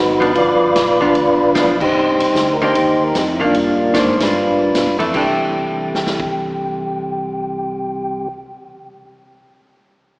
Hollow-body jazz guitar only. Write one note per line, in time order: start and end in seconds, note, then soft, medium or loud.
0.20 0.72 F3 medium
0.20 0.72 B3 medium
0.20 0.73 D4 medium
1.01 1.14 F3 medium
1.01 1.14 B3 medium
1.01 1.14 D4 medium
1.55 1.78 F3 medium
1.55 1.78 B3 medium
1.55 1.78 D4 medium
2.62 2.74 D#3 medium
2.62 2.74 A#3 medium
2.62 2.74 D4 medium
3.40 3.53 D#3 medium
3.40 3.53 A#3 medium
3.40 3.54 D4 medium
3.94 4.17 D#3 medium
3.94 4.18 A#3 medium
3.94 4.18 D4 medium
4.99 5.12 E3 medium
4.99 5.14 A3 medium
4.99 5.16 D4 medium
5.13 8.30 E3 medium
5.13 8.33 A3 medium
5.13 8.34 D4 medium